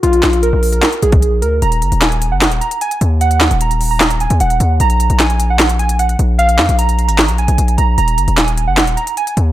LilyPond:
<<
  \new Staff \with { instrumentName = "Synth keys" } { \time 4/4 \key ees \minor \tempo 4 = 151 f'4 bes'8. bes'8. aes'4 bes'8 | bes''4 aes''8. ges''8. bes''8 aes''8 r8 | ges''4 bes''8. bes''8. aes''8 ges''4 | bes''4 aes''8. ges''8. aes''8 ges''8 r8 |
f''4 bes''8. bes''8. aes''4 bes''8 | bes''4 aes''8. ges''8. bes''8 aes''8 r8 | }
  \new Staff \with { instrumentName = "808-style bass" } { \clef bass \time 4/4 \key ees \minor bes,,8 bes,,8. bes,,8. r8 bes,,4 d,8 | ees,,8 ges,,16 ees,,4 ges,,16. ees,,16. r4 ees,8~ | ees,8. ees,,2 ees,16 ees,,8 ees,8 | bes,,8. bes,,2~ bes,,8. bes,,8~ |
bes,,8 f,16 bes,,4 aes,,8 bes,,8 bes,,16 bes,,8 bes,,8 | ees,,8 ges,,16 ees,,4 ges,,16. ees,,16. r4 ees,8 | }
  \new DrumStaff \with { instrumentName = "Drums" } \drummode { \time 4/4 hh16 hh16 <hc hh sn>16 hh16 hh8 hho16 hh16 <hc hh sn>16 hh16 hh16 <hh bd>16 hh8 hh8 | hh16 hh16 hh16 hh16 <hc hh sn>16 hh16 hh8 <hc hh sn>16 hh16 hh16 hh16 hh16 hh16 hh8 | hh16 hh16 <hc hh sn>16 hh16 hh16 hh16 hho8 <hc hh sn>16 hh16 hh16 hh16 hh16 hh16 hh8 | hh16 hh16 hh16 hh16 <hc hh sn>16 hh16 hh8 <hc hh sn>16 hh16 hh16 hh16 hh16 hh16 hh8 |
hh16 hh16 <hc hh sn>16 hh16 hh16 hh16 <hh hho>16 hh16 <hc hh sn>16 hh16 hh16 hh16 hh16 hh16 hh8 | hh16 hh16 hh16 hh16 <hc hh sn>16 hh16 hh8 <hc hh sn>16 hh16 hh16 hh16 hh16 hh16 hh8 | }
>>